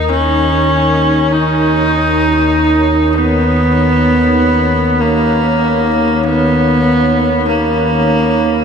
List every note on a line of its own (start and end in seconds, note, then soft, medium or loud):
0.00 8.64 D#2 medium
0.00 8.64 D#3 medium
0.00 0.11 D#4 loud
0.00 8.64 D#4 medium
0.00 8.64 A#4 medium
0.00 1.12 D#5 medium
0.09 1.34 C#4 medium
0.74 8.64 C#5 medium
1.32 3.18 D#4 loud
3.17 5.02 B3 loud
5.01 6.26 A#3 medium
6.24 7.47 B3 medium
7.48 8.64 A#3 medium